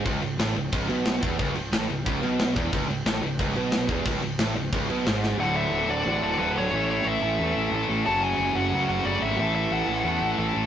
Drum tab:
CC |xxxxxxxx|xxxxxxxx|xxxxxxxx|xxxxxxx-|
SD |--o---o-|--o---o-|--o---o-|--o---oo|
BD |o---o--o|o---o--o|o---o--o|o---o---|

CC |--------|--------|--------|--------|
SD |--------|--------|--------|--------|
BD |--------|--------|--------|--------|